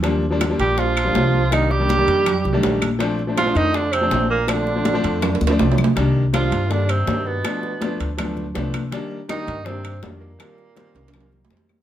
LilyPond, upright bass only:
\new Staff \with { instrumentName = "Upright bass" } { \clef bass \time 4/4 \key c \dorian \tempo 4 = 162 ees,4. bes,,4. c,4~ | c,4. f,4 c,8 bes,,4~ | bes,,4. f,4. bes,,4~ | bes,,4. f,4 d,8 c,4 |
c,4. g,4. g,4 | r4. d,4. c,4 | r4. g,4. f,4 | r4. c,4. f,4 | }